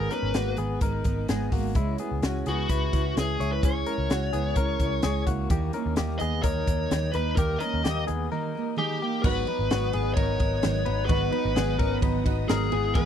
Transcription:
Already playing: G#2 D#3 G#3 B3 D#4 G#4 A#4
0.10 G#3 B3 C#4 D#4 A#4 B4, closed hi-hat
0.23 G#1
0.34 G#1 G#2 D#3 G#3 A#3 B3 D#4 F#4 A#4, snare, closed hi-hat
0.57 G#1 G#3 B3 D#4 G#4 A#4, closed hi-hat
0.81 G#1 G#3 B3 D#4 A#4, kick, closed hi-hat
1.04 G#1 B3 D#4 A#4, kick, closed hi-hat
1.08 G#3
1.29 G#1 G#2 D#3 G#3 B3 D#4 G#4 A#4, snare, closed hi-hat
1.52 G#1 A#3 B3 D#4 F#4 A#4, kick, open hi-hat
1.56 G#3
1.75 C#2 C#3 G#3 C#4 E4, kick, closed hi-hat
1.98 B3 C#4 E4 G#4, closed hi-hat
2.03 G#3
2.12 C#2
2.23 C#2 C#3 G#3 C#4 E4 F#4, snare, closed hi-hat
2.46 C#2 G#3 B3 C#4 E4 F#4 G#4, closed hi-hat
2.69 C#2 C#3 G#3 C#4 E4 B4, kick, closed hi-hat
2.93 C#2 G#3 C#4 E4, kick, closed hi-hat
3.17 C#2 C#3 G#3 C#4 E4 G#4, snare, closed hi-hat
3.39 C#2 G#3 C#4 E4 C#5, closed hi-hat
3.52 B4
3.63 C#2 C#3 G#3 C#4 E4 G#4 C#5, kick, closed hi-hat
3.86 G#3 C#4 E4 A#4, closed hi-hat
3.98 C#2
4.10 C#2 C#3 G#3 C#4 E4 F#4, snare, closed hi-hat
4.33 C#2 G#3 B3 C#4 E4 G#4, closed hi-hat
4.56 C#2 C#3 G#3 C#4 A#4, kick, closed hi-hat
4.60 E4
4.79 C#2 C#4 E4, kick, closed hi-hat
4.84 G#3
5.03 C#2 C#3 G#3 C#4 E4 G#4, snare, closed hi-hat
5.26 C#2 G#3 A#3 C#4 E4 F#4, kick, closed hi-hat
5.50 D#2 D#3 G3 A#3 D#4 G4, kick, closed hi-hat
5.73 G3 A#3 C#4 D#4 A#4, closed hi-hat
5.86 D#2
5.96 D#2 D#3 G3 A#3 D#4 G4, snare, closed hi-hat
6.19 D#2 G3 A#3 B3 D#4 G#4 D#5, closed hi-hat
6.42 D#2 D#3 G3 A#3 D#4 A#4 C#5, kick, closed hi-hat
6.66 D#2 G3 A#3 D#4, kick, closed hi-hat
6.89 D#2 D#3 G3 A#3 D#4, snare, closed hi-hat
7.12 D#2 A#3 D#4 B4, closed hi-hat
7.17 G3
7.36 D#2 D#3 G3 A#3 D#4 G4 A#4, kick, closed hi-hat
7.58 C#4 D#4 A#4 D#5, closed hi-hat
7.63 G3 A#3
7.74 D#2
7.84 D#2 D#3 G3 A#3 D#4 G4, snare, closed hi-hat
8.07 D#2 G3 A#3 B3 D#4 G#4, closed hi-hat
8.31 D#3 G3 A#3 D#4 A#4
8.55 G3 A#3 D#4
8.76 D#3 G3 A#3 D#4 G4 G#4
8.99 G3 A#3 D#4 G4
9.22 G#1 G#2 D#3 F#3 B3 D#4 F#4 B4 D#5 F#5 D#6, kick, crash
9.26 B4
9.46 F#3 B3 D#4 B4, ride
9.59 G#1
9.69 G#1 G#2 D#3 F#3 B3 D#4 F#4, snare, ride
9.92 G#1 F#3 B3 D#4 G#4, ride
10.14 G#1 D#3 F#3 D#4 A#4 C#5, kick, ride
10.18 B3 D#4
10.38 G#1 F#3 B3 D#4, kick, ride
10.62 G#1 G#2 D#3 F#3 B3 D#4, snare, ride
10.84 F#3 B3 D#4 B4, ride
10.88 G#1
11.06 G#1 G#2 D#3 F#3 B3 D#4 F#4 B4, kick, ride
11.10 B3 D#4 F#4 B4
11.31 F#3 B3 D#4 B4, ride
11.45 G#1
11.54 G#1 G#2 D#3 F#3 B3 D#4 G#4, snare, ride
11.78 G#1 F#3 B3 C#4 D#4 A#4, kick, ride
12.00 G#1 D#3 F#3 B3 D#4 B4, kick, ride
12.04 D#4
12.24 G#1 F#3 B3 D#4 F#4 B4, kick, ride
12.48 G#1 G#2 D#3 F#3 B3 D#4 G#4 A#4, snare, ride
12.70 G#1 G#3 B3 E4 G#4 B4 E5 G#5 E6, ride
12.94 G#2 E3 G#3 B3 E4 G#4 B4, kick, ride

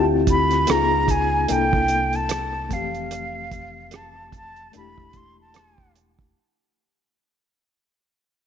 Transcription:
Already playing: D2 C4 E4 F4 G4
0.27 B5, kick, closed hi-hat
0.51 cross-stick, closed hi-hat
0.67 C#2 B3 D#4 F4, cross-stick, closed hi-hat
0.71 G#4 A#5
1.08 G#5, kick, closed hi-hat
1.48 C2 A#3 D4 E4 A4 G5, closed hi-hat
1.73 kick
1.88 closed hi-hat
2.13 A5, closed hi-hat
2.29 cross-stick, closed hi-hat
2.69 F1 A3 C4, kick, closed hi-hat
2.73 E3 G4 F5
2.95 closed hi-hat
3.11 closed hi-hat
3.51 kick, closed hi-hat
3.91 cross-stick, closed hi-hat
3.96 A5
4.32 kick, closed hi-hat
4.37 A5
4.56 closed hi-hat
4.71 E1 A3 D4, closed hi-hat
4.76 E4 G4 B5
4.98 kick
5.13 C6, kick, closed hi-hat
5.41 A5
5.54 cross-stick, closed hi-hat
5.78 kick
5.96 closed hi-hat
6.19 kick

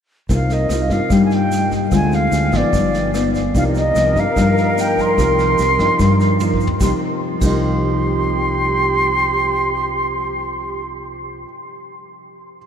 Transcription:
0.29 C2 C3 A#3 D#4 F4 F5, kick, snare, shaker
0.50 A#4 D#5, snare, shaker
0.66 C2 D#5, cross-stick, snare
0.70 A#3 D#4 F4, shaker
0.82 F5
0.90 G2 A#3 D#4 F4 F5, kick, snare, shaker
1.10 G2 G3 A#3 D#4 F4, kick, cross-stick, snare, shaker
1.25 G#5
1.31 snare, shaker
1.35 G5
1.51 snare, shaker
1.71 kick, snare, shaker
1.92 D2 D3 G#3 C4 F4 G#5, kick, cross-stick, snare, shaker
2.12 F5, snare, shaker
2.32 D2, snare, shaker
2.52 G#1 F3 B3 D#4, kick, cross-stick, snare, shaker
2.57 D5
2.73 G1 G2, kick, snare, shaker
2.94 snare, shaker
3.14 F3 B3 D#4, cross-stick, snare, shaker
3.34 kick, snare, shaker
3.54 C2 C3 F3 A#3 D#4 A#4 F5, kick, snare, shaker
3.75 D#5, snare, shaker
3.96 C2 F3 A#3 D#4, cross-stick, snare, shaker
4.16 G2, kick, snare, shaker
4.20 F5
4.36 G2 F3 A#3 D#4, kick, cross-stick, snare, shaker
4.58 snare, shaker
4.78 G5, snare, shaker
4.98 C6, kick, snare, shaker
5.18 C2 C3 F3 A#3 D#4, kick, cross-stick, snare, shaker
5.39 snare, shaker
5.58 C2, snare, shaker
5.79 G2 F3 A#3 D#4, kick, cross-stick, snare, shaker
5.99 G2, kick, snare, shaker
6.20 snare, shaker
6.40 F3 A#3 D#4, high tom, shaker
6.54 kick
6.60 shaker
6.67 floor tom
6.79 C2 C3 F3 D#4 G4 C6, kick, snare, shaker
6.84 A#3 D#4
7.40 C2 C3 F3 D#4 G4, kick, crash, shaker
7.44 A#3 D#4 C6

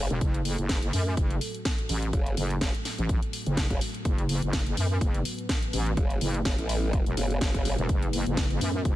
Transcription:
Already playing: A3 F#4 A4
0.10 E1, closed hi-hat
0.21 F#1, kick, closed hi-hat
0.34 closed hi-hat
0.45 open hi-hat
0.58 F#1, closed hi-hat
0.69 kick, snare, closed hi-hat
0.82 closed hi-hat
0.93 F#2, open hi-hat
1.17 F#1, kick, closed hi-hat
1.30 closed hi-hat
1.41 open hi-hat
1.54 closed hi-hat
1.65 kick, snare, closed hi-hat
1.78 closed hi-hat
1.89 A1, open hi-hat
2.02 closed hi-hat
2.13 F#1, kick, closed hi-hat
2.26 closed hi-hat
2.37 F#1, open hi-hat
2.50 closed hi-hat
2.61 F#1, kick, snare, closed hi-hat
2.74 closed hi-hat
2.85 snare, open hi-hat
2.98 A1, closed hi-hat
3.09 kick, closed hi-hat
3.23 closed hi-hat
3.33 open hi-hat
3.46 F#1, closed hi-hat
3.57 kick, snare, closed hi-hat
3.70 F#1, kick, closed hi-hat
3.81 open hi-hat
3.94 closed hi-hat
4.05 F#1 B4, kick, closed hi-hat
4.18 closed hi-hat
4.29 open hi-hat
4.42 F#1, closed hi-hat
4.53 kick, snare, closed hi-hat
4.66 closed hi-hat
4.77 F#2, open hi-hat
5.01 F#1, kick, closed hi-hat
5.14 closed hi-hat
5.25 open hi-hat
5.38 closed hi-hat
5.49 kick, snare, closed hi-hat
5.62 closed hi-hat
5.73 A1, open hi-hat
5.86 closed hi-hat
5.97 F#1, kick, closed hi-hat
6.10 closed hi-hat
6.21 F#1, open hi-hat
6.34 closed hi-hat
6.45 F#1, kick, snare, closed hi-hat
6.58 A1, closed hi-hat
6.69 open hi-hat
6.93 kick, closed hi-hat
7.06 E1, closed hi-hat
7.17 F#1, open hi-hat
7.30 closed hi-hat
7.41 F#1, kick, snare, closed hi-hat
7.54 kick, closed hi-hat
7.65 open hi-hat
7.78 E1, closed hi-hat
7.89 F#1, kick, closed hi-hat
8.02 closed hi-hat
8.13 open hi-hat
8.26 F#1, closed hi-hat
8.37 kick, snare, closed hi-hat
8.50 closed hi-hat
8.61 F#2, open hi-hat
8.85 F#1, kick, closed hi-hat

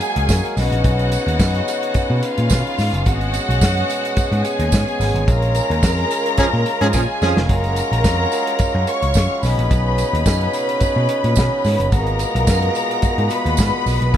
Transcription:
Already playing: F#3 G#3 A#3 F#4 G#4 G#5
0.01 closed hi-hat, tambourine
0.16 C#2, closed hi-hat
0.29 F#2, kick, snare, tambourine
0.45 closed hi-hat
0.56 B1 C#3 B3 C#4 D#4 F#4 F#5, snare, open hi-hat, tambourine
0.72 A#1, closed hi-hat
0.84 B1, kick, closed hi-hat, tambourine
0.99 closed hi-hat
1.12 closed hi-hat, tambourine
1.27 D#2, closed hi-hat
1.40 F#2, kick, snare, tambourine
1.54 closed hi-hat
1.68 closed hi-hat, tambourine
1.83 closed hi-hat
1.94 muted picked electric bass stroke, kick, closed hi-hat, tambourine
2.10 B2
2.23 F4 F5, closed hi-hat, tambourine
2.38 A#2, closed hi-hat
2.50 B2, kick, snare, tambourine
2.67 closed hi-hat
2.78 G#2, snare, open hi-hat, tambourine
2.93 F#1, closed hi-hat
3.06 G#1 B2 G#3 F#4 F#5, kick, closed hi-hat, tambourine
3.21 closed hi-hat
3.34 closed hi-hat, tambourine
3.49 B1, closed hi-hat
3.61 F#2, kick, snare, tambourine
3.77 closed hi-hat
3.90 closed hi-hat, tambourine
4.05 closed hi-hat
4.17 muted picked electric bass stroke, kick, closed hi-hat, tambourine
4.32 G#2, closed hi-hat
4.45 G#4 G#5, closed hi-hat, tambourine
4.59 D#2, closed hi-hat
4.72 G#2, kick, snare, tambourine
4.88 closed hi-hat
5.00 G#1, snare, open hi-hat, tambourine
5.14 G#1, closed hi-hat
5.28 A#1 C#3 F4 A#4 A#5, kick, closed hi-hat, tambourine
5.42 closed hi-hat
5.55 closed hi-hat, tambourine
5.70 D#2, closed hi-hat
5.83 F2, kick, snare, tambourine
5.98 closed hi-hat
6.11 closed hi-hat, tambourine
6.26 closed hi-hat
6.37 F3 C#4 G#4, muted picked electric bass stroke, kick, closed hi-hat, tambourine
6.54 A#2
6.66 closed hi-hat
6.81 G#2 F3 C#4 G#4, closed hi-hat
6.93 A#2 F3 C#4 G#4 G#5, kick, snare, tambourine
7.22 F2 F3 C#4 G#4, snare, tambourine
7.37 F1, snare
7.49 F#1 F4 F#4 A#4 A#5, kick, closed hi-hat
7.64 closed hi-hat
7.76 closed hi-hat, tambourine
7.92 A#1, closed hi-hat
8.04 F2, kick, snare, tambourine
8.32 closed hi-hat, tambourine
8.47 closed hi-hat
8.59 muted picked electric bass stroke, kick, closed hi-hat, tambourine
8.75 F#2
8.87 C#5 C#6, closed hi-hat, tambourine
9.02 C#2, closed hi-hat
9.14 F#2, kick, snare, tambourine
9.43 B1 B2 C#3 D#4 B4 B5, snare, open hi-hat, tambourine
9.58 A#1, closed hi-hat
9.71 B1, kick, closed hi-hat, tambourine
9.98 closed hi-hat, tambourine
10.13 D#2, closed hi-hat
10.26 F#2, kick, snare, tambourine
10.41 closed hi-hat
10.53 closed hi-hat, tambourine
10.69 closed hi-hat
10.81 muted picked electric bass stroke, kick, closed hi-hat, tambourine
10.96 B2
11.09 closed hi-hat
11.24 A#2, closed hi-hat
11.36 B2, kick, snare, tambourine
11.64 G#2, snare, open hi-hat, tambourine
11.80 F#1, closed hi-hat
11.92 G#1 A#2 G#3 F#4 A#4 A#5, kick, closed hi-hat, tambourine
12.07 closed hi-hat
12.19 closed hi-hat, tambourine
12.35 B1, closed hi-hat
12.47 F#2, kick, snare, tambourine
12.62 closed hi-hat
12.75 closed hi-hat, tambourine
12.91 closed hi-hat
13.02 muted picked electric bass stroke, kick, closed hi-hat, tambourine
13.18 G#2, closed hi-hat
13.30 B4 B5, closed hi-hat, tambourine
13.46 D#2, closed hi-hat
13.57 G#2, kick, snare, tambourine
13.86 B1, open hi-hat, tambourine
14.01 B1, closed hi-hat
14.14 C#2, kick, closed hi-hat

